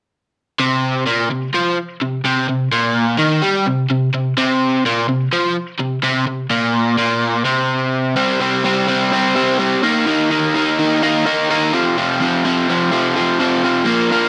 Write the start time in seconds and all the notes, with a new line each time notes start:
0.60 C3
1.07 A#2
1.31 C3
1.54 F3
2.01 C3
2.25 C3
2.49 C3
2.72 A#2
3.19 D#3
3.43 G3
3.67 C3
3.91 C3
4.14 C3
4.37 C3
4.86 A#2
5.09 C3
5.33 F3
5.80 C3
6.04 C3
6.27 C3
6.50 A#2
6.98 A#2
7.45 C3
8.16 C3 G3 C4
8.40 C3 G3 C4
8.64 C3 G3 C4
8.88 C3 G3 C4
9.12 C3 G3 C4
9.36 C3 G3 C4
9.59 C3 G3 C4
9.83 D#3 A#3 D#4
10.06 D#3 A#3 D#4
10.30 D#3 A#3 D#4
10.55 D#3 A#3 D#4
10.79 D#3 A#3 D#4
11.02 D#3 A#3 D#4
11.26 D#3 A#3 D#4
11.50 D#3 A#3 D#4
11.73 F2 C3 F3
11.97 F2 C3 F3
12.20 F2 C3 F3
12.44 F2 C3 F3
12.68 F2 C3 F3
12.91 F2 C3 F3
13.15 F2 C3 F3
13.39 F2 C3 F3
13.63 F2 C3 F3
13.85 A#2 F3 A#3
14.11 A#2 F3 A#3